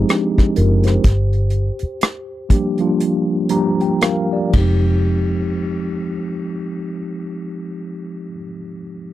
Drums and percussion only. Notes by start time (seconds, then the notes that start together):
0.09 cross-stick, closed hi-hat
0.38 kick, cross-stick
0.56 closed hi-hat
0.83 cross-stick, closed hi-hat
1.04 kick, closed hi-hat
1.33 closed hi-hat
1.50 closed hi-hat
1.79 closed hi-hat
2.01 cross-stick, closed hi-hat
2.50 kick, closed hi-hat
2.78 closed hi-hat
3.00 closed hi-hat
3.49 closed hi-hat
3.81 closed hi-hat
4.01 cross-stick, closed hi-hat
4.53 kick, ride